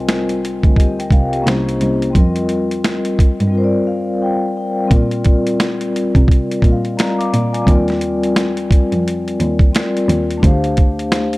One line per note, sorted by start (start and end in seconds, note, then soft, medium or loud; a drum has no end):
0.00 0.60 C2 loud
0.00 1.39 G3 medium
0.00 1.41 C4 medium
0.00 1.42 F4 medium
0.00 0.75 A#4 medium
0.00 0.76 D#5 medium
0.09 finger snap medium
0.09 snare loud
0.09 closed hi-hat medium
0.29 closed hi-hat soft
0.45 closed hi-hat medium
0.63 1.10 D2 medium
0.63 kick medium
0.63 closed hi-hat soft
0.76 0.97 G4 soft
0.76 0.97 D#5 medium
0.76 kick medium
0.76 closed hi-hat medium
0.99 1.12 A#4 soft
0.99 1.11 G5 medium
0.99 closed hi-hat soft
1.11 1.41 C2 medium
1.11 1.32 F5 medium
1.11 kick medium
1.11 closed hi-hat medium
1.33 1.45 G4 medium
1.33 1.65 D#5 medium
1.33 closed hi-hat soft
1.42 2.13 A#3 medium
1.42 2.14 C#4 medium
1.42 2.14 E4 medium
1.42 2.15 G4 medium
1.47 1.76 C2 medium
1.47 2.16 C5 medium
1.47 finger snap medium
1.47 snare loud
1.47 closed hi-hat medium
1.69 closed hi-hat soft
1.81 2.11 C2 medium
1.81 closed hi-hat medium
2.02 closed hi-hat soft
2.10 3.46 G3 medium
2.10 3.49 C4 medium
2.15 3.36 F2 loud
2.15 3.50 F4 medium
2.15 3.51 A#4 medium
2.15 kick loud
2.15 closed hi-hat medium
2.20 3.53 D#5 medium
2.36 closed hi-hat soft
2.49 closed hi-hat medium
2.71 closed hi-hat soft
2.84 finger snap medium
2.84 snare loud
2.84 closed hi-hat medium
3.05 closed hi-hat medium
3.19 kick medium
3.19 closed hi-hat medium
3.40 3.51 G2 medium
3.40 closed hi-hat soft
3.48 4.84 G3 medium
3.48 4.86 C4 medium
3.52 4.88 F4 medium
3.52 4.89 A#4 medium
3.58 3.63 C5 medium
3.64 4.93 D5 medium
3.87 4.19 F5 medium
4.22 4.54 G5 medium
4.57 4.89 G5 medium
4.85 6.57 G3 medium
4.85 6.58 C4 medium
4.90 6.11 A#2 loud
4.90 6.59 F4 medium
4.90 6.61 A#4 medium
4.90 kick loud
4.90 closed hi-hat medium
4.95 6.62 D5 medium
5.11 closed hi-hat soft
5.25 kick medium
5.25 closed hi-hat medium
5.47 closed hi-hat medium
5.60 finger snap medium
5.60 snare loud
5.60 closed hi-hat medium
5.81 closed hi-hat medium
5.96 closed hi-hat medium
6.15 6.62 C3 medium
6.15 kick medium
6.15 closed hi-hat soft
6.28 kick medium
6.28 closed hi-hat medium
6.51 closed hi-hat soft
6.61 6.93 A#2 medium
6.61 7.65 G3 medium
6.61 7.63 C4 soft
6.61 7.65 F4 medium
6.61 7.67 A#4 soft
6.61 kick medium
6.61 closed hi-hat medium
6.65 6.72 D#5 soft
6.72 7.02 F5 medium
6.85 closed hi-hat soft
6.97 7.18 D5 soft
6.97 7.17 A#5 medium
6.97 finger snap medium
6.97 snare loud
6.97 closed hi-hat medium
7.18 7.32 F5 medium
7.18 7.31 D6 medium
7.18 closed hi-hat soft
7.33 7.63 A#2 medium
7.33 7.53 D5 medium
7.33 7.52 A#5 medium
7.33 closed hi-hat medium
7.53 7.86 G#5 medium
7.53 closed hi-hat medium
7.62 7.72 F3 medium
7.62 9.68 C4 medium
7.67 8.91 D#2 loud
7.67 9.70 G3 medium
7.67 9.70 F4 medium
7.67 9.71 A#4 medium
7.67 kick loud
7.67 closed hi-hat medium
7.71 9.72 D5 medium
7.88 snare soft
7.88 closed hi-hat soft
8.01 closed hi-hat medium
8.23 closed hi-hat medium
8.36 finger snap medium
8.36 snare loud
8.36 closed hi-hat medium
8.57 closed hi-hat medium
8.71 kick loud
8.71 closed hi-hat medium
8.92 9.33 F2 medium
8.92 closed hi-hat soft
9.08 closed hi-hat medium
9.28 closed hi-hat soft
9.40 9.69 D#2 medium
9.40 closed hi-hat medium
9.59 kick medium
9.59 closed hi-hat soft
9.72 10.42 G3 medium
9.72 10.42 C4 soft
9.72 10.43 F4 medium
9.72 10.43 A#4 medium
9.72 closed hi-hat medium
9.76 10.44 D5 medium
9.76 finger snap medium
9.76 snare loud
9.97 closed hi-hat soft
10.09 10.38 D#2 medium
10.09 closed hi-hat medium
10.31 closed hi-hat soft
10.37 11.38 A3 medium
10.37 11.38 D4 medium
10.42 11.38 D2 loud
10.42 11.38 G4 medium
10.42 11.38 C5 medium
10.42 kick medium
10.42 closed hi-hat medium
10.47 11.38 F5 medium
10.64 closed hi-hat soft
10.77 kick medium
10.77 closed hi-hat medium
10.99 closed hi-hat soft
11.12 finger snap medium
11.12 snare loud
11.12 closed hi-hat medium
11.33 closed hi-hat medium